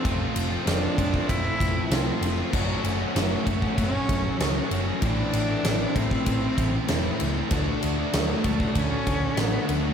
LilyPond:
<<
  \new Staff \with { instrumentName = "Cello" } { \time 4/4 \key fis \minor \tempo 4 = 96 bis8 r8 d'4 e'4. r8 | r4 a4 cis'4. r8 | d'4. c'2 r8 | r4 a4 cis'4 b8 a8 | }
  \new Staff \with { instrumentName = "Distorted electric guitar" } { \time 4/4 \key fis \minor <f a c' f'>8. <a c' f'>16 <f a c' f'>8. <a c' f'>8 <a c' f'>16 <f a c' f'>8 <f a c' f'>8 <f a c' f'>16 <a c' f'>16 | <fis a cis' fis'>8. <a cis' fis'>16 <fis a cis' fis'>8. <a cis' fis'>8 <a cis' fis'>16 <fis a cis' fis'>8 <fis a cis' fis'>8 <fis a cis' fis'>16 <a cis' fis'>16 | <a, e a c' e'>8. <a c' e'>16 <a, e a c' e'>8. <a c' e'>8 <a c' e'>16 <e a c' e'>8 <a, e a c' e'>8 <e a c' e'>16 <a c' e'>16 | <d a d' fis'>8. <a d' fis'>16 <d a d' fis'>8. <a d' fis'>8 <a d' fis'>16 <d a d' fis'>8 <d a d' fis'>8 <d a d' fis'>16 <a d' fis'>16 | }
  \new Staff \with { instrumentName = "Distorted electric guitar" } { \time 4/4 \key fis \minor <f a c' f'>8 <f a c' f'>16 <a c' f'>16 <f a c' f'>8 <f a c' f'>16 <a c' f'>8 <a c' f'>16 <f a c' f'>16 <a c' f'>16 <f a c' f'>16 <a c' f'>8 <a c' f'>16 | <fis a cis' fis'>8 <fis a cis' fis'>16 <a cis' fis'>16 <fis a cis' fis'>8 <fis a cis' fis'>16 <a cis' fis'>8 <a cis' fis'>16 <fis a cis' fis'>16 <a cis' fis'>16 <fis a cis' fis'>16 <a cis' fis'>8 <a cis' fis'>16 | <a, e a c' e'>8 <e a c' e'>16 <a c' e'>16 <a, e a c' e'>8 <e a c' e'>16 <a c' e'>8 <a c' e'>16 <e a c' e'>16 <a c' e'>16 <a, e a c' e'>16 <a c' e'>8 <a c' e'>16 | <d a d' fis'>8 <d a d' fis'>16 <a d' fis'>16 <d a d' fis'>8 <d a d' fis'>16 <a d' fis'>8 <a d' fis'>16 <d a d' fis'>16 <a d' fis'>16 <d a d' fis'>16 <a d' fis'>8 <a d' fis'>16 | }
  \new Staff \with { instrumentName = "Overdriven electric guitar" } { \time 4/4 \key fis \minor <f a c' f'>4. <f a c' f'>2~ <f a c' f'>8 | <fis a cis' fis'>4. <fis a cis' fis'>2~ <fis a cis' fis'>8 | <a, e a c' e'>4. <a, e a c' e'>2~ <a, e a c' e'>8 | <d a d' fis'>4. <d a d' fis'>2~ <d a d' fis'>8 | }
  \new Staff \with { instrumentName = "Picked electric bass" } { \clef bass \time 4/4 \key fis \minor f,,8 f,,8 f,,8 f,,8 f,,8 f,,8 c,8 f,,8 | fis,,8 fis,,8 fis,,8 fis,,8 fis,,8 fis,,8 cis,8 fis,,8 | a,,8 a,,8 a,,8 a,,8 a,,8 a,,8 e,,8 cis,8 | d,8 d,8 d,8 d,8 d,8 d,8 a,,8 d,8 | }
  \new DrumStaff \with { instrumentName = "Drums" } \drummode { \time 4/4 <bd cymr>8 cymr8 <cymr sn>8 <bd cymr>16 bd16 <bd cymr>8 <bd cymr>8 <cymr sn>8 cymr8 | <cymc bd>8 cymr8 <cymr sn>8 <bd cymr>16 bd16 <bd cymr>8 <bd cymr>8 <cymr sn>8 cymr8 | <bd cymr>8 cymr8 <cymr sn>8 <bd cymr>16 bd16 <bd cymr>8 <bd cymr>8 <cymr sn>8 cymr8 | <bd cymr>8 cymr8 <cymr sn>8 <bd cymr>16 bd16 <bd cymr>8 <bd cymr>8 <cymr sn>8 cymr8 | }
>>